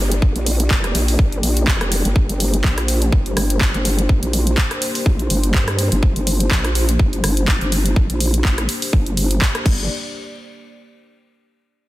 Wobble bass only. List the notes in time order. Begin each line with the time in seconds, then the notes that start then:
Already playing: G1
0.22 G1
0.36 A#1
0.71 F1
0.95 A#1
1.19 G1
1.43 A#1
1.67 F1
2.05 G1
2.16 G1
2.29 G1
2.64 A#1
3.12 G1
3.37 G1
3.61 G1
3.74 G1
4.09 G1
4.23 A#1
5.06 A#1
5.30 G1
5.54 G2
5.92 G1
6.03 G1
6.16 G1
6.51 A#1
6.99 G1
7.24 G1
7.48 G1
7.61 G1
7.96 G1
8.10 A#1
8.45 A1
8.93 G1
9.66 G1